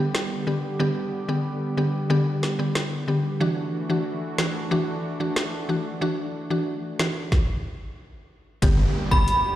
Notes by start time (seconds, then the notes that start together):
Already playing: D3 G3 B3 G4
0.00 B3 G4
0.15 snare
0.47 D3 B3 G4
0.79 D3 B3 G4
1.28 D3 B3 G4
1.77 D3 B3 G4
2.10 D3 B3 G4
2.43 snare
2.59 D3 B3 G4
2.75 snare
3.08 D3 B3 G4
3.40 E3 A3 D4 F#4
3.89 E3 D4 F#4
4.38 E3 D4 F#4, snare
4.71 E3 D4 F#4
5.20 E3 D4 F#4
5.36 snare
5.69 E3 D4 F#4
6.01 E3 D4 F#4
6.50 E3 D4 F#4
6.99 E3 D4 F#4, snare
7.32 kick, snare
8.62 G1 D3 G3 B3 G4, kick, closed hi-hat, downlifter
9.11 G1 D3 B3 G4 B5, kick
9.28 closed hi-hat